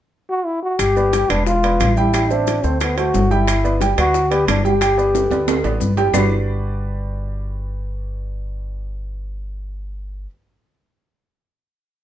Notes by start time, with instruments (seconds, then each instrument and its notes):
0.29 trombone F#4
0.46 trombone E4
0.63 trombone F#4
0.79 upright bass G1, trombone G4, high bongo, high conga, high timbale, claves, maracas
0.96 upright piano B3 B4 D5, high bongo, high conga, maracas
1.13 upright piano G3 G4 G5, high bongo, high conga, high timbale, maracas
1.30 upright bass E1, upright piano B3 B4 D5, trombone D4, high bongo, high conga, high timbale, claves, maracas
1.46 trombone F4, high bongo, high conga, maracas
1.63 upright piano B3 B4 D5, high bongo, high conga, high timbale, maracas
1.80 upright bass A1, high bongo, low bongo, high conga, high timbale, low timbale, claves, maracas
1.97 upright piano G3 G4 G5, trombone E4, high conga, maracas
2.14 upright piano G3 G4 G5, high bongo, high timbale, claves, maracas
2.30 upright piano C4 C5 E5, trombone D4, high bongo, high conga, maracas
2.47 high bongo, high conga, high timbale, maracas
2.64 upright bass D2, upright piano A3 A4 C5, trombone C4, high bongo, high conga, maracas
2.81 trombone B3, high bongo, high conga, high timbale, claves, maracas
2.97 upright piano A3 A4 C5, trombone F#4, high bongo, high conga, high timbale, maracas
3.14 upright bass G1, high bongo, low bongo, high conga, low timbale, maracas
3.31 upright piano G3 G4 G5, trombone E4, high conga, maracas
3.48 high bongo, high timbale, claves, maracas
3.64 upright piano B3 B4 D5, high bongo, high conga, maracas
3.81 upright piano G3 G4 G5, high bongo, high conga, high timbale, maracas
3.97 upright bass D2, upright piano B3 B4 D5, trombone F#4, high bongo, high timbale, claves, maracas
4.14 high bongo, high conga, maracas
4.31 upright piano B3 B4 D5, trombone G4, high bongo, high conga, high timbale, maracas
4.47 upright bass G1, trombone D4, high bongo, low bongo, high conga, high timbale, low timbale, claves, maracas
4.64 upright piano G3 G4 G5, trombone G4, high conga, maracas
4.81 upright piano G3 G4 G5, high bongo, high timbale, claves, maracas
4.98 upright piano B3 B4 D5, high bongo, high conga, maracas
5.15 high bongo, high conga, high timbale, maracas
5.31 upright bass D2, upright piano B3 B4 D5, high bongo, high conga, high timbale, maracas
5.47 high bongo, high conga, high timbale, claves, maracas
5.64 upright bass A1, upright piano B3 B4 D5, high bongo, high conga, low timbale, maracas
5.80 upright bass G1, high bongo, low bongo, high conga, maracas
5.97 upright piano G3 G4 G5, high conga, low timbale, maracas
6.13 upright bass G1, upright piano G3 D4 F#4 G4 B4 D5, low bongo, low conga, low timbale, claves, maracas